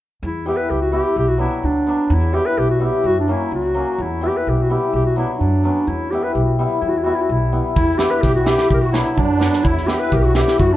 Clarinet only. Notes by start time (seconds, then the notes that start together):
0.25 E4
0.48 G4
0.57 B4
0.71 G4
0.82 F#4
0.94 G4
1.18 G4
1.28 F#4
1.40 E4
1.65 D4
2.13 E4
2.34 G4
2.46 B4
2.59 G4
2.71 F#4
2.85 G4
3.06 F#4
3.20 D4
3.31 E4
3.55 F#4
4.02 E4
4.24 G4
4.37 B4
4.49 G4
4.62 F#4
4.72 G4
4.95 G4
5.06 F#4
5.18 E4
5.34 E4
5.39 D4
5.87 E4
6.11 G4
6.23 B4
6.34 G4
6.44 F#4
6.81 E4
6.89 F#4
6.97 E4
7.04 F#4
7.15 E4
7.22 F#4
7.32 E4
7.76 E4
7.98 G4
8.11 B4
8.22 G4
8.36 F#4
8.47 G4
8.70 G4 A#4
8.76 G4
8.81 F#4
8.92 E4
9.17 D4
9.63 E4
9.87 G4
10.00 B4
10.13 G4 A#4
10.19 G4
10.24 F#4
10.35 G4
10.60 F#4
10.73 D4